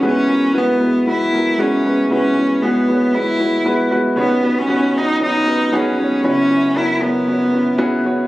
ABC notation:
X:1
M:4/4
L:1/16
Q:1/4=116
K:Elyd
V:1 name="Upright piano"
[G,B,EFB]2 [G,B,EFA]2 [G,B,EFB]2 [G,B,EFB]2 [G,B,EFB]2 [G,B,EFA]2 [G,B,EFG]2 [G,B,EFB]2 | [G,B,EFB]2 [G,B,EFc]2 [G,B,EFG]2 [G,B,EFc]2 [G,B,EFB]2 [G,B,EFB]2 [G,B,EFB]2 [G,B,EFB]2 | [B,CDFc]2 [B,CDFc]2 [B,CDFc]2 [B,CDFc]2 [B,CDFc]2 [B,CDFB]2 [B,CDFG]2 [B,CDFc]2 | [B,CEFc]2 [B,CEFe]2 [B,CEFA]2 [B,CEFc]2 [B,CEFc]2 [B,CEFc]2 [B,CEFG]2 [B,CEFc]2 |]
V:2 name="Upright piano" clef=bass
[E,,E,]16 | [E,,E,]16 | [D,,D,]16 | [F,,,F,,]16 |]
V:3 name="Cello"
C4 B,4 E4 C4 | C4 B,4 E6 z2 | B,3 C3 D2 D4 C4 | C4 E2 B,8 z2 |]